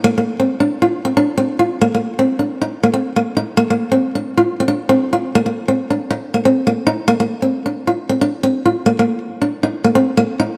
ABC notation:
X:1
M:4/4
L:1/16
Q:1/4=136
K:Bb
V:1 name="Steel-string acoustic guitar"
B, B,2 C2 D2 F2 C D2 C2 F2 | B, B,2 C2 D2 E2 B, C2 B,2 E2 | B, B,2 C2 D2 F2 C D2 C2 F2 | B, B,2 C2 D2 z2 B, C2 B,2 E2 |
B, B,2 C2 D2 F2 C D2 C2 F2 | B, B,2 z2 D2 E2 B, C2 B,2 E2 |]